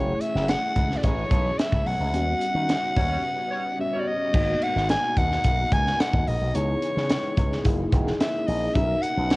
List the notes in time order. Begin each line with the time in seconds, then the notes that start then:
Already playing: F#1 E3 A3 C#4 E4 F#4 G#4 C#5
0.00 A3
0.21 E5, closed hi-hat
0.35 F#1, snare
0.48 F#5, snare, closed hi-hat
0.76 C#2, kick, closed hi-hat
0.91 snare
0.97 D5
1.03 A1 C#5, kick, closed hi-hat
1.31 B1, kick, closed hi-hat
1.59 E5, snare, closed hi-hat
1.72 C#2, kick
1.86 B1 F#5, open hi-hat
2.00 C#2
2.12 D#2 C#3 G3 B3 C#4 D#4 F#4, closed hi-hat
2.41 closed hi-hat
2.55 D#3
2.69 snare, closed hi-hat
2.96 D#2 G3 F#4 C#5, kick, open hi-hat
3.10 G3 F#4 C#5
3.51 G3 F#4 C#5
3.79 G3 B3 C#4 F#4 E5
3.93 G3 F#4 C#5
4.00 D5
4.08 D#5
4.32 G#1 B2 G#3 A#3 B3 D#4 F#4 A#4, kick, crash
4.62 F#5, closed hi-hat
4.76 G#1, snare
4.89 G#5, snare, closed hi-hat
5.17 D#2 F#5, kick, closed hi-hat
5.32 snare
5.44 B1, kick, closed hi-hat
5.72 C#2 G#5, kick, closed hi-hat
5.87 snare
6.00 F#5, snare, closed hi-hat
6.13 D#2, kick
6.27 A#1 D#5, open hi-hat
6.41 B1
6.54 C#2 C#3 E3 G#3 B3 D#4 E4 G#4 C#5, closed hi-hat
6.82 closed hi-hat
6.97 C#3, snare
7.09 snare, closed hi-hat
7.37 C#2, kick, closed hi-hat
7.52 snare
7.63 F#1 C#3 A#3 D#4 E4 G#4, kick, closed hi-hat
7.92 E1, kick, closed hi-hat
8.07 snare
8.20 E5, snare, closed hi-hat
8.47 A#1 D#5, open hi-hat
8.74 B1 B3 C#4 D#4 F#4 G#4 E5, kick, closed hi-hat
8.82 A#4
9.02 F#5, closed hi-hat
9.17 B1
9.30 snare, closed hi-hat